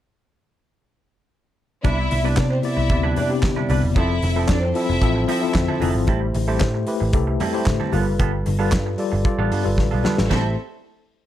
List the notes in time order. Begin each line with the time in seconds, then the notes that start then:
1.83 C2 C3 G3 B3 D4 E4 B4 D5 E5, kick, closed hi-hat, muted conga
1.98 muted clean electric guitar stroke
2.11 C2, muted clean electric guitar stroke, open hi-hat, muted conga
2.23 C3 G3 B3 D4 E4 B4 D5
2.36 C3 D4 D5, muted clean electric guitar stroke, kick, snare, clap, closed hi-hat, high conga
2.49 C4 C5, muted clean electric guitar stroke
2.62 C3 B3 E4 D5 E5, open hi-hat
2.77 C2, muted clean electric guitar stroke
2.90 D2 C3 B3 E4 D5, muted clean electric guitar stroke, kick, closed hi-hat
3.03 G3 D4 E4 B4
3.16 G3 D4 E4 B4 D5, open hi-hat, muted conga, low conga
3.29 C3 B3 E4 G4, muted clean electric guitar stroke
3.43 C3, muted clean electric guitar stroke, kick, snare, clap, closed hi-hat, high conga
3.56 G3 D4 E4 B4, high conga
3.69 C2 C3 G3 B3 D4 E4 B4 D5, open hi-hat, high conga
3.83 E1, muted clean electric guitar stroke
3.95 F1 F3 C4 E4 A4 E5, kick, closed hi-hat, muted conga
4.09 muted clean electric guitar stroke
4.22 F1, muted clean electric guitar stroke, open hi-hat, muted conga
4.35 F3 C4 E4 A4
4.48 F2 D4 D5, kick, snare, clap, closed hi-hat, high conga
4.61 C4 C5, muted clean electric guitar stroke
4.75 F3 C4 E4 A4 E5, open hi-hat
4.90 F1, muted clean electric guitar stroke
5.01 A1 F3 C4 E4 A4, kick, closed hi-hat
5.15 muted clean electric guitar stroke
5.28 F3 C4 E4 A4 E5, open hi-hat, muted conga
5.42 F3 C4 E4 A4, muted clean electric guitar stroke
5.54 F2, muted clean electric guitar stroke, kick, snare, clap, closed hi-hat, high conga
5.68 F3 C4 E4 A4, high conga
5.80 F1 F3 C4 E4 A4, open hi-hat, high conga
5.95 G#1, muted clean electric guitar stroke
6.07 A1 G3 A3 C4 E4 G4 A4 C5, kick, closed hi-hat, muted conga
6.21 muted clean electric guitar stroke
6.34 A1, muted clean electric guitar stroke, open hi-hat, muted conga
6.47 G3 A3 C4 E4 G4 A4 C5
6.60 A2, muted clean electric guitar stroke, kick, snare, clap, closed hi-hat, high conga
6.74 muted clean electric guitar stroke
6.87 A3 E4 G4 B4, open hi-hat
7.00 A1, muted clean electric guitar stroke
7.13 C2 A3 E4 G4 A4, muted clean electric guitar stroke, kick, closed hi-hat
7.27 muted clean electric guitar stroke
7.40 G3 C4 E4 A4, open hi-hat, muted conga, low conga
7.53 G3 A3 C4 E4 G4 A4 C5
7.66 A2, kick, snare, clap, closed hi-hat, high conga
7.80 G3 C4 E4 A4, high conga
7.92 G1 G3 B3 F4 A4 A#4, open hi-hat, high conga
8.01 B4
8.06 F#1, muted clean electric guitar stroke
8.19 G1 G3 B3 F4 A4, kick, closed hi-hat, muted conga
8.33 muted clean electric guitar stroke
8.46 G1, muted clean electric guitar stroke, open hi-hat, muted conga
8.59 G3 B3 F4 A4 B4
8.72 G2, kick, snare, clap, closed hi-hat, high conga
8.86 muted clean electric guitar stroke
8.98 G3 F4 A4 D5, open hi-hat
9.12 G1, muted clean electric guitar stroke
9.24 G3 F4 A4 D5, muted clean electric guitar stroke, kick, closed hi-hat
9.39 A1 G3 B3 F4 A4
9.51 G2 G3 B3 F4 A4, open hi-hat, muted conga
9.64 G1 G3 F4 A4 B4, muted clean electric guitar stroke
9.78 A1, muted clean electric guitar stroke, kick, snare, high conga
9.91 B1 G3 B3 F4 A4
10.03 G3 B3 F4 A4 B4, snare, high conga
10.17 A1, muted clean electric guitar stroke, snare
10.30 A1 G3 A3 C4 E4 G4 A4 C5 E5, kick, snare, ride bell, muted conga